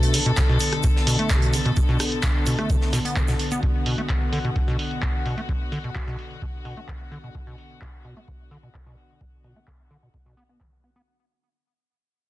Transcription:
Already playing: B2 D3 B3 A4
0.03 closed hi-hat
0.14 D3, snare, open hi-hat, shaker
0.26 B2, closed hi-hat
0.37 B2, kick, snare, clap, closed hi-hat, shaker
0.49 B2
0.60 open hi-hat, shaker
0.73 cross-stick, closed hi-hat
0.83 B2, kick, closed hi-hat, shaker
0.96 snare
1.07 B2, open hi-hat, shaker
1.19 A3, closed hi-hat
1.30 B2, kick, snare, clap, closed hi-hat, shaker
1.42 closed hi-hat
1.53 D3, open hi-hat, shaker
1.66 B2, closed hi-hat
1.77 B2, kick, closed hi-hat, shaker
1.89 B2
2.00 cross-stick, open hi-hat, shaker
2.12 closed hi-hat
2.23 B2, kick, snare, clap, closed hi-hat, shaker
2.46 B2, open hi-hat, shaker
2.58 A3, cross-stick, closed hi-hat
2.70 B2, kick, closed hi-hat, shaker
2.82 snare
2.93 B2, snare, open hi-hat, shaker
3.05 B3, closed hi-hat
3.16 B2, kick, clap, closed hi-hat, shaker
3.28 B2, snare, shaker
3.39 closed hi-hat, open hi-hat
3.51 B3, closed hi-hat, shaker
3.63 B2 F#4, kick, closed hi-hat
3.86 B2, open hi-hat
3.98 A3, closed hi-hat
4.09 D3, kick, clap, closed hi-hat
4.33 D3, open hi-hat
4.45 B2, closed hi-hat
4.56 B2, kick, closed hi-hat
4.68 B2
4.79 open hi-hat
4.91 closed hi-hat
5.02 B2, kick, clap, closed hi-hat
5.26 B2, open hi-hat
5.38 A3, closed hi-hat
5.49 D3, kick, closed hi-hat
5.72 D3, open hi-hat
5.84 B2, closed hi-hat
5.95 B2, kick, clap, closed hi-hat
6.07 B2
6.19 open hi-hat
6.31 closed hi-hat
6.42 B2, kick, closed hi-hat
6.65 B2, open hi-hat
6.77 A3, closed hi-hat
6.88 D3, kick, clap, closed hi-hat
7.12 D3, open hi-hat
7.24 B2, closed hi-hat
7.35 B2, kick, closed hi-hat
7.47 B2
7.58 open hi-hat
7.70 closed hi-hat
7.81 B2, kick, clap, closed hi-hat
8.05 B2, open hi-hat
8.17 A3, closed hi-hat
8.28 D3, kick, closed hi-hat
8.51 D3, open hi-hat
8.63 B2, closed hi-hat
8.74 B2, kick, clap, closed hi-hat
8.86 B2
8.98 open hi-hat
9.10 closed hi-hat
9.21 B2, kick, closed hi-hat
9.44 B2, open hi-hat
9.56 A3, closed hi-hat
9.67 D3, kick, clap, closed hi-hat
9.91 D3, open hi-hat
10.03 B2
10.14 B2, kick, closed hi-hat
10.26 B2
10.37 B3, open hi-hat
10.49 B3
10.60 D3, kick, clap
10.84 B3, open hi-hat
10.96 B3

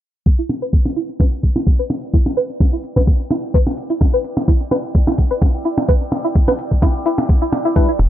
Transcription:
0.26 E4, kick
0.39 E4
0.49 closed hi-hat, percussion blips
0.62 B4
0.68 G5
0.73 kick
0.85 percussion blips
0.96 E4, closed hi-hat
1.10 D5
1.20 B4, kick, percussion blips
1.32 claves
1.43 kick, closed hi-hat
1.56 E4, percussion blips
1.67 kick
1.79 B4
1.90 closed hi-hat, percussion blips
2.13 E4, kick
2.26 percussion blips
2.37 B4, closed hi-hat
2.60 kick, percussion blips, claves
2.73 E4
2.84 closed hi-hat
2.96 B4, kick, percussion blips
3.07 kick
3.31 E4, closed hi-hat, percussion blips
3.54 B4, kick
3.67 percussion blips
3.78 closed hi-hat
3.90 E4, claves
4.01 kick, percussion blips
4.14 B4
4.24 closed hi-hat
4.37 percussion blips
4.48 E4, kick
4.71 B4, closed hi-hat, percussion blips
4.95 kick
5.07 E4, percussion blips
5.18 kick, closed hi-hat, claves
5.31 B4
5.42 kick, percussion blips
5.65 E4, closed hi-hat
5.78 percussion blips
5.88 B4, kick
6.12 closed hi-hat, percussion blips
6.24 E4
6.35 kick
6.48 B4, percussion blips, claves
6.59 closed hi-hat
6.71 kick
6.82 E4, kick, percussion blips
7.06 E4, closed hi-hat
7.18 percussion blips
7.29 kick
7.42 E4
7.53 closed hi-hat, percussion blips
7.65 E4
7.76 G3 D4 E4 B4, kick
7.89 E4
7.99 E1, closed hi-hat, percussion blips

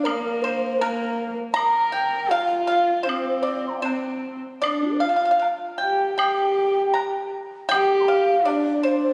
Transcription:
0.04 A#3 A#4, high woodblock
0.42 C5
0.79 A#3 A#4, low woodblock
1.54 A#4 A#5, high woodblock
1.91 G5
2.30 F4 F5, low woodblock
2.66 F5
3.03 C5
3.08 C4, high woodblock
3.42 D5
3.67 A#5 C6
3.74 G5
3.79 C5 D5 F5
3.84 C4, low woodblock
4.61 D4 D5, high woodblock
4.82 D4 F4
4.87 G4
4.92 A#4 C5
4.98 D5 F5
5.04 F4
5.09 F5
5.16 F5
5.25 F5
5.31 F5
5.39 F5, low woodblock
5.78 G4 G5
6.17 G4 G5, high woodblock
6.94 A#5, low woodblock
7.69 G4 G5, high woodblock
7.74 G5
8.00 A#5 C6
8.06 F5 G5
8.11 F5
8.45 D4 D5, low woodblock
8.83 C5

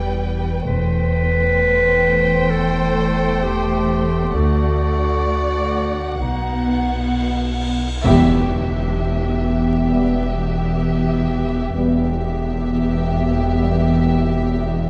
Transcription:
Already playing: E1 E2 G3 B4 G5
0.66 E1 E2 A3 B4 C5 G5
2.50 A4
3.43 G4
4.34 D2 F#4 D5 F#5, cymbal swell
6.19 B1 B2 B3 D#4 F#5
8.04 E1 E2 G3 B3 G4 E5, impact
9.89 G3 B3
11.73 E1 E2 G3 B3 G4 E5
13.59 G3 B3

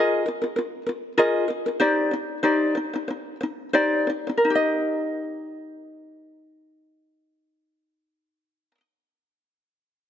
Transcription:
Already playing: F4 G#4 A#4 D#5
0.26 F4 A#4
0.42 F4 A#4
0.56 F4 A#4
0.86 F4 A#4
1.18 F4 G#4 A#4 D#5
1.48 F4 A#4
1.66 F4 A#4
1.80 D#4 G4 C5 D5
2.11 D#4 C5
2.43 D#4 G4 C5 D5
2.75 D#4 C5
2.93 D#4 C5
3.08 D#4 C5
3.41 D#4 C5
3.73 D#4 G4 C5 D5
4.07 D#4 C5
4.27 D#4 C5
4.37 A#4
4.45 D#4
4.50 G4
4.55 D#5

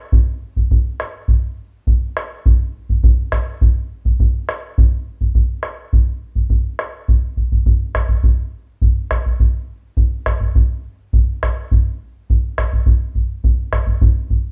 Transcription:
0.12 bombo low
0.56 bombo low
0.71 bombo low
1.00 bombo rim
1.28 bombo low
1.87 bombo low
2.17 bombo rim
2.46 bombo low
2.89 bombo low
3.03 bombo low
3.32 bombo rim, bombo low
3.61 bombo low
4.05 bombo low
4.20 bombo low
4.49 bombo rim
4.78 bombo low
5.21 bombo low
5.35 bombo low
5.63 bombo rim
5.93 bombo low
6.35 bombo low
6.50 bombo low
6.79 bombo rim
7.08 bombo low
7.37 bombo low
7.52 bombo low
7.66 bombo low
7.95 bombo rim, bombo low
8.09 bombo low
8.23 bombo low
8.82 bombo low
9.11 bombo rim, bombo low
9.26 bombo low
9.40 bombo low
9.97 bombo low
10.26 bombo rim, bombo low
10.41 bombo low
10.55 bombo low
11.13 bombo low
11.43 bombo rim, bombo low
11.71 bombo low
12.30 bombo low
12.58 bombo rim, bombo low
12.73 bombo low
12.86 bombo low
13.15 bombo low
13.44 bombo low
13.73 bombo rim, bombo low
13.87 bombo low
14.01 bombo low
14.30 bombo low

